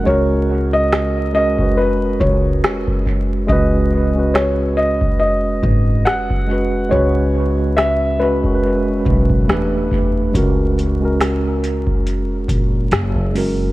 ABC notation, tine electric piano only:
X:1
M:4/4
L:1/16
Q:"Swing 16ths" 1/4=70
K:C#dor
V:1 name="Tine electric piano"
[G,CFA]4 z2 [G,CFA] [G,CFB]4- [G,CFB] z4 | [G,CFB]2 z [G,CFB]4- [G,CFB] z6 [G,CFB] z | [G,CFB]4 z2 [G,CFB] [G,CFAB]4- [G,CFAB] [=A,=D=GB]3 z | [G,CFA]2 z [G,CFA]4- [G,CFA] z6 [G,CFA] z |]